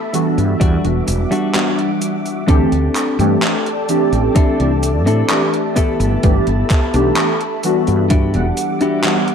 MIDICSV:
0, 0, Header, 1, 7, 480
1, 0, Start_track
1, 0, Key_signature, 1, "major"
1, 0, Tempo, 937500
1, 1272, Time_signature, 4, 2, 24, 8
1, 4787, End_track
2, 0, Start_track
2, 0, Title_t, "String machine"
2, 0, Program_c, 0, 50
2, 0, Note_on_c, 0, 69, 75
2, 0, Note_on_c, 0, 76, 68
2, 0, Note_on_c, 0, 81, 74
2, 0, Note_on_c, 0, 83, 85
2, 293, Note_off_c, 0, 69, 0
2, 301, Note_off_c, 0, 81, 0
2, 301, Note_off_c, 0, 83, 0
2, 312, Note_on_c, 0, 55, 79
2, 312, Note_on_c, 0, 78, 69
2, 313, Note_on_c, 0, 86, 89
2, 1252, Note_off_c, 0, 76, 0
2, 1263, Note_off_c, 0, 55, 0
2, 1263, Note_off_c, 0, 78, 0
2, 1263, Note_off_c, 0, 86, 0
2, 1275, Note_on_c, 0, 69, 83
2, 1275, Note_on_c, 0, 79, 74
2, 1275, Note_on_c, 0, 81, 94
2, 1276, Note_on_c, 0, 74, 77
2, 2224, Note_off_c, 0, 79, 0
2, 2233, Note_on_c, 0, 76, 77
2, 2937, Note_off_c, 0, 69, 0
2, 2937, Note_off_c, 0, 74, 0
2, 2937, Note_off_c, 0, 81, 0
2, 2953, Note_on_c, 0, 83, 82
2, 2954, Note_on_c, 0, 69, 78
2, 2954, Note_on_c, 0, 81, 68
2, 4134, Note_off_c, 0, 76, 0
2, 4141, Note_off_c, 0, 69, 0
2, 4141, Note_off_c, 0, 81, 0
2, 4141, Note_off_c, 0, 83, 0
2, 4155, Note_on_c, 0, 55, 81
2, 4156, Note_on_c, 0, 78, 73
2, 4156, Note_on_c, 0, 86, 89
2, 4158, Note_on_c, 0, 76, 74
2, 4787, Note_off_c, 0, 55, 0
2, 4787, Note_off_c, 0, 76, 0
2, 4787, Note_off_c, 0, 78, 0
2, 4787, Note_off_c, 0, 86, 0
2, 4787, End_track
3, 0, Start_track
3, 0, Title_t, "Clean electric guitar"
3, 0, Program_c, 1, 27
3, 306, Note_on_c, 1, 55, 86
3, 310, Note_on_c, 1, 62, 78
3, 314, Note_on_c, 1, 66, 91
3, 432, Note_off_c, 1, 55, 0
3, 433, Note_off_c, 1, 62, 0
3, 435, Note_off_c, 1, 66, 0
3, 670, Note_on_c, 1, 55, 89
3, 674, Note_on_c, 1, 62, 82
3, 677, Note_on_c, 1, 66, 101
3, 971, Note_off_c, 1, 55, 0
3, 973, Note_off_c, 1, 62, 0
3, 975, Note_off_c, 1, 66, 0
3, 1268, Note_on_c, 1, 60, 113
3, 1271, Note_on_c, 1, 62, 103
3, 1274, Note_on_c, 1, 67, 98
3, 1276, Note_on_c, 1, 69, 122
3, 1750, Note_off_c, 1, 60, 0
3, 1752, Note_off_c, 1, 62, 0
3, 1753, Note_off_c, 1, 67, 0
3, 1754, Note_off_c, 1, 69, 0
3, 2226, Note_on_c, 1, 60, 78
3, 2230, Note_on_c, 1, 62, 76
3, 2232, Note_on_c, 1, 64, 81
3, 2235, Note_on_c, 1, 69, 89
3, 2410, Note_off_c, 1, 60, 0
3, 2412, Note_off_c, 1, 62, 0
3, 2413, Note_off_c, 1, 64, 0
3, 2415, Note_off_c, 1, 69, 0
3, 2592, Note_on_c, 1, 60, 89
3, 2594, Note_on_c, 1, 62, 84
3, 2597, Note_on_c, 1, 64, 87
3, 2600, Note_on_c, 1, 69, 101
3, 2772, Note_off_c, 1, 60, 0
3, 2773, Note_off_c, 1, 62, 0
3, 2775, Note_off_c, 1, 64, 0
3, 2776, Note_off_c, 1, 69, 0
3, 2948, Note_on_c, 1, 59, 97
3, 2952, Note_on_c, 1, 64, 89
3, 2954, Note_on_c, 1, 67, 87
3, 2957, Note_on_c, 1, 69, 109
3, 3719, Note_off_c, 1, 59, 0
3, 3721, Note_off_c, 1, 64, 0
3, 3722, Note_off_c, 1, 67, 0
3, 3724, Note_off_c, 1, 69, 0
3, 4147, Note_on_c, 1, 62, 84
3, 4150, Note_on_c, 1, 64, 77
3, 4153, Note_on_c, 1, 66, 76
3, 4155, Note_on_c, 1, 67, 92
3, 4331, Note_off_c, 1, 62, 0
3, 4332, Note_off_c, 1, 64, 0
3, 4334, Note_off_c, 1, 66, 0
3, 4335, Note_off_c, 1, 67, 0
3, 4510, Note_on_c, 1, 62, 94
3, 4514, Note_on_c, 1, 64, 85
3, 4516, Note_on_c, 1, 66, 85
3, 4519, Note_on_c, 1, 67, 99
3, 4691, Note_off_c, 1, 62, 0
3, 4693, Note_off_c, 1, 64, 0
3, 4694, Note_off_c, 1, 66, 0
3, 4696, Note_off_c, 1, 67, 0
3, 4787, End_track
4, 0, Start_track
4, 0, Title_t, "Synth keys"
4, 0, Program_c, 2, 88
4, 66, Note_on_c, 2, 52, 90
4, 68, Note_on_c, 2, 55, 80
4, 71, Note_on_c, 2, 59, 81
4, 72, Note_on_c, 2, 62, 84
4, 75, Note_on_c, 2, 66, 93
4, 402, Note_off_c, 2, 52, 0
4, 403, Note_off_c, 2, 55, 0
4, 404, Note_off_c, 2, 59, 0
4, 405, Note_off_c, 2, 62, 0
4, 406, Note_off_c, 2, 66, 0
4, 427, Note_on_c, 2, 52, 70
4, 428, Note_on_c, 2, 55, 64
4, 431, Note_on_c, 2, 59, 67
4, 433, Note_on_c, 2, 62, 65
4, 435, Note_on_c, 2, 66, 77
4, 760, Note_off_c, 2, 52, 0
4, 761, Note_off_c, 2, 55, 0
4, 762, Note_off_c, 2, 59, 0
4, 763, Note_off_c, 2, 62, 0
4, 764, Note_off_c, 2, 66, 0
4, 785, Note_on_c, 2, 52, 75
4, 787, Note_on_c, 2, 55, 73
4, 789, Note_on_c, 2, 59, 69
4, 790, Note_on_c, 2, 62, 71
4, 793, Note_on_c, 2, 66, 85
4, 1241, Note_off_c, 2, 52, 0
4, 1241, Note_off_c, 2, 55, 0
4, 1242, Note_off_c, 2, 59, 0
4, 1243, Note_off_c, 2, 62, 0
4, 1244, Note_off_c, 2, 66, 0
4, 1267, Note_on_c, 2, 52, 97
4, 1269, Note_on_c, 2, 57, 83
4, 1271, Note_on_c, 2, 60, 86
4, 1273, Note_on_c, 2, 62, 87
4, 1275, Note_on_c, 2, 67, 109
4, 1385, Note_off_c, 2, 52, 0
4, 1386, Note_off_c, 2, 57, 0
4, 1387, Note_off_c, 2, 60, 0
4, 1388, Note_off_c, 2, 62, 0
4, 1389, Note_off_c, 2, 67, 0
4, 1632, Note_on_c, 2, 52, 84
4, 1633, Note_on_c, 2, 57, 76
4, 1636, Note_on_c, 2, 60, 80
4, 1638, Note_on_c, 2, 62, 80
4, 1639, Note_on_c, 2, 67, 93
4, 1813, Note_off_c, 2, 52, 0
4, 1814, Note_off_c, 2, 57, 0
4, 1815, Note_off_c, 2, 60, 0
4, 1816, Note_off_c, 2, 62, 0
4, 1817, Note_off_c, 2, 67, 0
4, 1988, Note_on_c, 2, 52, 87
4, 1990, Note_on_c, 2, 57, 81
4, 1992, Note_on_c, 2, 60, 84
4, 1993, Note_on_c, 2, 62, 81
4, 1996, Note_on_c, 2, 67, 100
4, 2323, Note_off_c, 2, 52, 0
4, 2324, Note_off_c, 2, 57, 0
4, 2325, Note_off_c, 2, 60, 0
4, 2326, Note_off_c, 2, 62, 0
4, 2327, Note_off_c, 2, 67, 0
4, 2352, Note_on_c, 2, 52, 69
4, 2354, Note_on_c, 2, 57, 66
4, 2356, Note_on_c, 2, 60, 69
4, 2358, Note_on_c, 2, 62, 63
4, 2360, Note_on_c, 2, 67, 80
4, 2683, Note_off_c, 2, 52, 0
4, 2684, Note_off_c, 2, 57, 0
4, 2685, Note_off_c, 2, 60, 0
4, 2686, Note_off_c, 2, 62, 0
4, 2687, Note_off_c, 2, 67, 0
4, 2710, Note_on_c, 2, 52, 75
4, 2712, Note_on_c, 2, 57, 72
4, 2714, Note_on_c, 2, 71, 72
4, 2715, Note_on_c, 2, 62, 71
4, 2718, Note_on_c, 2, 67, 86
4, 3163, Note_off_c, 2, 52, 0
4, 3164, Note_off_c, 2, 57, 0
4, 3165, Note_off_c, 2, 62, 0
4, 3165, Note_off_c, 2, 71, 0
4, 3167, Note_off_c, 2, 67, 0
4, 3188, Note_on_c, 2, 52, 95
4, 3189, Note_on_c, 2, 57, 84
4, 3192, Note_on_c, 2, 59, 89
4, 3194, Note_on_c, 2, 62, 86
4, 3195, Note_on_c, 2, 67, 98
4, 3305, Note_off_c, 2, 52, 0
4, 3306, Note_off_c, 2, 57, 0
4, 3307, Note_off_c, 2, 59, 0
4, 3308, Note_off_c, 2, 62, 0
4, 3309, Note_off_c, 2, 67, 0
4, 3552, Note_on_c, 2, 52, 86
4, 3554, Note_on_c, 2, 57, 77
4, 3556, Note_on_c, 2, 59, 80
4, 3558, Note_on_c, 2, 62, 82
4, 3560, Note_on_c, 2, 67, 96
4, 3734, Note_off_c, 2, 52, 0
4, 3735, Note_off_c, 2, 57, 0
4, 3736, Note_off_c, 2, 59, 0
4, 3737, Note_off_c, 2, 62, 0
4, 3737, Note_off_c, 2, 67, 0
4, 3909, Note_on_c, 2, 52, 88
4, 3911, Note_on_c, 2, 55, 79
4, 3913, Note_on_c, 2, 59, 79
4, 3915, Note_on_c, 2, 62, 84
4, 3918, Note_on_c, 2, 66, 95
4, 4244, Note_off_c, 2, 52, 0
4, 4244, Note_off_c, 2, 55, 0
4, 4246, Note_off_c, 2, 59, 0
4, 4247, Note_off_c, 2, 62, 0
4, 4248, Note_off_c, 2, 66, 0
4, 4271, Note_on_c, 2, 52, 75
4, 4273, Note_on_c, 2, 55, 66
4, 4275, Note_on_c, 2, 59, 66
4, 4277, Note_on_c, 2, 62, 66
4, 4279, Note_on_c, 2, 78, 82
4, 4602, Note_off_c, 2, 52, 0
4, 4604, Note_off_c, 2, 55, 0
4, 4604, Note_off_c, 2, 59, 0
4, 4605, Note_off_c, 2, 62, 0
4, 4606, Note_off_c, 2, 78, 0
4, 4628, Note_on_c, 2, 52, 75
4, 4630, Note_on_c, 2, 55, 73
4, 4633, Note_on_c, 2, 59, 73
4, 4633, Note_on_c, 2, 62, 70
4, 4637, Note_on_c, 2, 78, 82
4, 4787, Note_off_c, 2, 52, 0
4, 4787, Note_off_c, 2, 55, 0
4, 4787, Note_off_c, 2, 59, 0
4, 4787, Note_off_c, 2, 62, 0
4, 4787, Note_off_c, 2, 78, 0
4, 4787, End_track
5, 0, Start_track
5, 0, Title_t, "Fretless electric bass"
5, 0, Program_c, 3, 35
5, 193, Note_on_c, 3, 43, 81
5, 273, Note_off_c, 3, 43, 0
5, 310, Note_on_c, 3, 40, 76
5, 393, Note_off_c, 3, 40, 0
5, 433, Note_on_c, 3, 28, 79
5, 513, Note_off_c, 3, 28, 0
5, 553, Note_on_c, 3, 28, 89
5, 634, Note_off_c, 3, 28, 0
5, 1271, Note_on_c, 3, 38, 91
5, 1354, Note_off_c, 3, 38, 0
5, 1393, Note_on_c, 3, 38, 84
5, 1472, Note_off_c, 3, 38, 0
5, 1632, Note_on_c, 3, 43, 102
5, 1712, Note_off_c, 3, 43, 0
5, 2111, Note_on_c, 3, 33, 83
5, 2192, Note_off_c, 3, 33, 0
5, 2354, Note_on_c, 3, 36, 82
5, 2593, Note_off_c, 3, 36, 0
5, 2593, Note_on_c, 3, 45, 93
5, 2673, Note_off_c, 3, 45, 0
5, 3071, Note_on_c, 3, 31, 97
5, 3152, Note_off_c, 3, 31, 0
5, 3192, Note_on_c, 3, 31, 90
5, 3274, Note_off_c, 3, 31, 0
5, 3314, Note_on_c, 3, 31, 83
5, 3393, Note_off_c, 3, 31, 0
5, 3553, Note_on_c, 3, 35, 104
5, 3633, Note_off_c, 3, 35, 0
5, 4033, Note_on_c, 3, 43, 82
5, 4273, Note_on_c, 3, 28, 91
5, 4281, Note_off_c, 3, 43, 0
5, 4353, Note_off_c, 3, 28, 0
5, 4787, End_track
6, 0, Start_track
6, 0, Title_t, "Muted clean electric guitar strokes"
6, 67, Note_on_c, 9, 29, 34
6, 118, Note_off_c, 9, 29, 0
6, 547, Note_on_c, 9, 29, 36
6, 598, Note_off_c, 9, 29, 0
6, 4787, End_track
7, 0, Start_track
7, 0, Title_t, "Drums"
7, 71, Note_on_c, 9, 42, 66
7, 71, Note_on_c, 9, 69, 64
7, 122, Note_off_c, 9, 42, 0
7, 122, Note_off_c, 9, 69, 0
7, 195, Note_on_c, 9, 42, 39
7, 195, Note_on_c, 9, 69, 38
7, 247, Note_off_c, 9, 42, 0
7, 247, Note_off_c, 9, 69, 0
7, 311, Note_on_c, 9, 36, 114
7, 312, Note_on_c, 9, 42, 92
7, 312, Note_on_c, 9, 69, 30
7, 363, Note_off_c, 9, 36, 0
7, 364, Note_off_c, 9, 42, 0
7, 364, Note_off_c, 9, 69, 0
7, 433, Note_on_c, 9, 42, 41
7, 484, Note_off_c, 9, 42, 0
7, 552, Note_on_c, 9, 42, 68
7, 552, Note_on_c, 9, 69, 69
7, 603, Note_off_c, 9, 42, 0
7, 603, Note_off_c, 9, 69, 0
7, 674, Note_on_c, 9, 42, 42
7, 674, Note_on_c, 9, 69, 39
7, 725, Note_off_c, 9, 42, 0
7, 725, Note_off_c, 9, 69, 0
7, 792, Note_on_c, 9, 39, 117
7, 792, Note_on_c, 9, 42, 98
7, 792, Note_on_c, 9, 69, 30
7, 843, Note_off_c, 9, 39, 0
7, 843, Note_off_c, 9, 42, 0
7, 843, Note_off_c, 9, 69, 0
7, 915, Note_on_c, 9, 42, 39
7, 966, Note_off_c, 9, 42, 0
7, 1032, Note_on_c, 9, 42, 65
7, 1032, Note_on_c, 9, 69, 68
7, 1083, Note_off_c, 9, 42, 0
7, 1083, Note_off_c, 9, 69, 0
7, 1155, Note_on_c, 9, 42, 41
7, 1155, Note_on_c, 9, 69, 36
7, 1206, Note_off_c, 9, 42, 0
7, 1206, Note_off_c, 9, 69, 0
7, 1272, Note_on_c, 9, 36, 116
7, 1272, Note_on_c, 9, 42, 101
7, 1272, Note_on_c, 9, 69, 28
7, 1323, Note_off_c, 9, 36, 0
7, 1323, Note_off_c, 9, 42, 0
7, 1323, Note_off_c, 9, 69, 0
7, 1394, Note_on_c, 9, 42, 42
7, 1445, Note_off_c, 9, 42, 0
7, 1513, Note_on_c, 9, 39, 62
7, 1513, Note_on_c, 9, 69, 69
7, 1565, Note_off_c, 9, 39, 0
7, 1565, Note_off_c, 9, 69, 0
7, 1636, Note_on_c, 9, 42, 43
7, 1636, Note_on_c, 9, 69, 38
7, 1687, Note_off_c, 9, 42, 0
7, 1687, Note_off_c, 9, 69, 0
7, 1753, Note_on_c, 9, 39, 118
7, 1753, Note_on_c, 9, 42, 96
7, 1753, Note_on_c, 9, 69, 29
7, 1804, Note_off_c, 9, 39, 0
7, 1804, Note_off_c, 9, 42, 0
7, 1804, Note_off_c, 9, 69, 0
7, 1876, Note_on_c, 9, 42, 42
7, 1927, Note_off_c, 9, 42, 0
7, 1991, Note_on_c, 9, 42, 66
7, 1991, Note_on_c, 9, 69, 67
7, 2042, Note_off_c, 9, 42, 0
7, 2042, Note_off_c, 9, 69, 0
7, 2113, Note_on_c, 9, 42, 38
7, 2113, Note_on_c, 9, 69, 37
7, 2164, Note_off_c, 9, 42, 0
7, 2164, Note_off_c, 9, 69, 0
7, 2231, Note_on_c, 9, 42, 100
7, 2231, Note_on_c, 9, 69, 30
7, 2232, Note_on_c, 9, 36, 119
7, 2282, Note_off_c, 9, 42, 0
7, 2282, Note_off_c, 9, 69, 0
7, 2284, Note_off_c, 9, 36, 0
7, 2355, Note_on_c, 9, 42, 42
7, 2406, Note_off_c, 9, 42, 0
7, 2473, Note_on_c, 9, 42, 72
7, 2473, Note_on_c, 9, 69, 68
7, 2524, Note_off_c, 9, 42, 0
7, 2524, Note_off_c, 9, 69, 0
7, 2596, Note_on_c, 9, 42, 43
7, 2596, Note_on_c, 9, 69, 40
7, 2647, Note_off_c, 9, 42, 0
7, 2647, Note_off_c, 9, 69, 0
7, 2712, Note_on_c, 9, 39, 123
7, 2712, Note_on_c, 9, 42, 102
7, 2712, Note_on_c, 9, 69, 31
7, 2763, Note_off_c, 9, 39, 0
7, 2763, Note_off_c, 9, 42, 0
7, 2763, Note_off_c, 9, 69, 0
7, 2835, Note_on_c, 9, 42, 43
7, 2886, Note_off_c, 9, 42, 0
7, 2951, Note_on_c, 9, 42, 69
7, 2951, Note_on_c, 9, 69, 68
7, 2953, Note_on_c, 9, 36, 59
7, 3002, Note_off_c, 9, 42, 0
7, 3002, Note_off_c, 9, 69, 0
7, 3004, Note_off_c, 9, 36, 0
7, 3074, Note_on_c, 9, 42, 42
7, 3074, Note_on_c, 9, 69, 39
7, 3125, Note_off_c, 9, 42, 0
7, 3125, Note_off_c, 9, 69, 0
7, 3191, Note_on_c, 9, 42, 93
7, 3191, Note_on_c, 9, 69, 27
7, 3193, Note_on_c, 9, 36, 127
7, 3242, Note_off_c, 9, 42, 0
7, 3242, Note_off_c, 9, 69, 0
7, 3244, Note_off_c, 9, 36, 0
7, 3312, Note_on_c, 9, 42, 43
7, 3363, Note_off_c, 9, 42, 0
7, 3431, Note_on_c, 9, 39, 68
7, 3431, Note_on_c, 9, 69, 68
7, 3433, Note_on_c, 9, 36, 111
7, 3482, Note_off_c, 9, 39, 0
7, 3482, Note_off_c, 9, 69, 0
7, 3485, Note_off_c, 9, 36, 0
7, 3552, Note_on_c, 9, 42, 43
7, 3552, Note_on_c, 9, 69, 38
7, 3603, Note_off_c, 9, 42, 0
7, 3603, Note_off_c, 9, 69, 0
7, 3669, Note_on_c, 9, 39, 127
7, 3669, Note_on_c, 9, 42, 95
7, 3669, Note_on_c, 9, 69, 29
7, 3720, Note_off_c, 9, 39, 0
7, 3720, Note_off_c, 9, 42, 0
7, 3720, Note_off_c, 9, 69, 0
7, 3792, Note_on_c, 9, 42, 43
7, 3843, Note_off_c, 9, 42, 0
7, 3909, Note_on_c, 9, 42, 69
7, 3909, Note_on_c, 9, 69, 66
7, 3960, Note_off_c, 9, 42, 0
7, 3960, Note_off_c, 9, 69, 0
7, 4031, Note_on_c, 9, 42, 39
7, 4031, Note_on_c, 9, 69, 35
7, 4082, Note_off_c, 9, 42, 0
7, 4082, Note_off_c, 9, 69, 0
7, 4148, Note_on_c, 9, 42, 101
7, 4148, Note_on_c, 9, 69, 30
7, 4153, Note_on_c, 9, 36, 127
7, 4199, Note_off_c, 9, 42, 0
7, 4199, Note_off_c, 9, 69, 0
7, 4204, Note_off_c, 9, 36, 0
7, 4269, Note_on_c, 9, 42, 41
7, 4320, Note_off_c, 9, 42, 0
7, 4388, Note_on_c, 9, 42, 72
7, 4388, Note_on_c, 9, 69, 65
7, 4440, Note_off_c, 9, 42, 0
7, 4440, Note_off_c, 9, 69, 0
7, 4509, Note_on_c, 9, 42, 44
7, 4509, Note_on_c, 9, 69, 38
7, 4560, Note_off_c, 9, 42, 0
7, 4560, Note_off_c, 9, 69, 0
7, 4627, Note_on_c, 9, 39, 127
7, 4627, Note_on_c, 9, 42, 97
7, 4627, Note_on_c, 9, 69, 29
7, 4678, Note_off_c, 9, 39, 0
7, 4678, Note_off_c, 9, 42, 0
7, 4678, Note_off_c, 9, 69, 0
7, 4750, Note_on_c, 9, 42, 43
7, 4787, Note_off_c, 9, 42, 0
7, 4787, End_track
0, 0, End_of_file